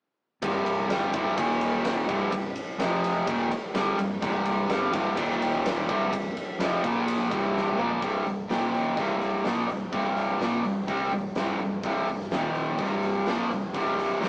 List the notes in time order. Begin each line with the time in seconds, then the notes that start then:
0.42 C1 C2 G2 C3, kick, ride
0.66 ride
0.90 G1 G2 D3 G3, snare, ride
1.13 C1 C2 G2 C3, kick, ride
1.37 D#1 D#2 A#2 D#3, kick, ride
1.50 snare
1.61 ride
1.85 snare, ride
2.07 C1 C2 G2 C3, kick, ride
2.31 C1 C2 G2, kick, ride
2.56 ride
2.78 F1 F2 C3 F3, snare, ride
3.04 ride
3.27 D#1 D#2 A#2 D#3, kick, ride
3.51 muted fingered electric bass stroke, muted distorted electric guitar stroke, ride
3.74 G1 G2 D3 G3, snare, ride
3.98 C1 C2 G2, ride
4.22 C1 C2 G2 C3, kick, ride
4.45 ride
4.69 G1 G2 D3 G3, snare, ride
4.93 C1 C2 G2 C3, kick, ride
5.17 D#1 D#2 A#2 D#3, kick, ride
5.31 snare
5.42 ride
5.66 snare, ride
5.88 C1 C2 G2 C3, kick, ride
6.12 C1 C2 G2, kick, ride
6.37 ride
6.59 F1 F2 C3 F3, snare, ride
6.83 A#1 A#2 F3 A#3, kick, ride
7.08 ride
7.31 C1 C2 G2 C3, kick, ride
7.57 snare
7.68 high tom
7.78 A#1 A#2 F3 A#3, mid tom
7.91 floor tom
8.01 C1 C2 G2 C3, kick, open hi-hat
8.25 C1 C2 G2, open hi-hat
8.50 D#1 D#2 A#2 D#3, snare, open hi-hat
8.74 open hi-hat
8.97 C1 C2 G2 C3, kick, open hi-hat
9.21 open hi-hat
9.44 A#1 A#2 F3 A#3, snare, open hi-hat
9.68 C1 C2 G2, open hi-hat
9.92 C1 C2 G2 C3, kick, open hi-hat
10.17 open hi-hat
10.39 A#1 A#2 F3 A#3, snare, open hi-hat
10.64 C1 C2 G2, open hi-hat
10.87 C2 C3 G3 C4, kick, open hi-hat
11.11 C1 C2 G2, open hi-hat
11.35 C1 C2 G2 C3, snare, open hi-hat
11.59 C1 C2 G2, open hi-hat
11.83 C1 C2 G2 C3, kick, open hi-hat
12.07 C1 C2 G2, open hi-hat
12.21 snare
12.30 D#1 D#2 A#2 D#3, snare, open hi-hat
12.55 open hi-hat
12.78 C1 C2 G2 C3, kick, open hi-hat
13.02 open hi-hat
13.25 A#1 A#2 F3 A#3, snare, open hi-hat
13.50 C1 C2 G2, open hi-hat
13.74 C1 C2 G2 C3, kick, open hi-hat
13.99 open hi-hat
14.20 A#1 A#2 F3 A#3, snare, open hi-hat